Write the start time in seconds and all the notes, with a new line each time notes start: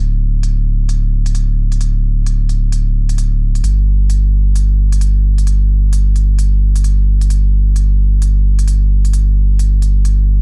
Already playing: D1
0.43 closed hi-hat
0.89 closed hi-hat
1.26 closed hi-hat
1.35 closed hi-hat
1.72 closed hi-hat
1.81 closed hi-hat
2.26 closed hi-hat
2.49 closed hi-hat
2.72 closed hi-hat
3.09 closed hi-hat
3.18 closed hi-hat
3.55 closed hi-hat
3.64 G1, closed hi-hat
4.10 closed hi-hat
4.56 closed hi-hat
4.92 closed hi-hat
5.01 closed hi-hat
5.38 closed hi-hat
5.47 closed hi-hat
5.93 closed hi-hat
6.16 closed hi-hat
6.39 closed hi-hat
6.76 closed hi-hat
6.84 closed hi-hat
7.21 closed hi-hat
7.30 closed hi-hat
7.76 closed hi-hat
8.22 closed hi-hat
8.59 closed hi-hat
8.68 closed hi-hat
9.05 closed hi-hat
9.13 closed hi-hat
9.59 closed hi-hat
9.82 closed hi-hat
10.05 closed hi-hat